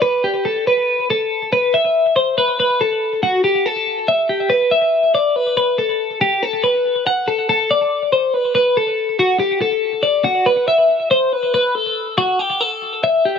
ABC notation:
X:1
M:7/8
L:1/8
Q:1/4=141
K:Ador
V:1 name="Clean electric guitar"
B G A B2 A2 | B e2 c B B A- | A F G A2 e G | B e2 d B B A- |
A G A B2 f A | A d2 c B B A- | A F G A2 d F | B e2 c B B A- |
A F G A2 e G |]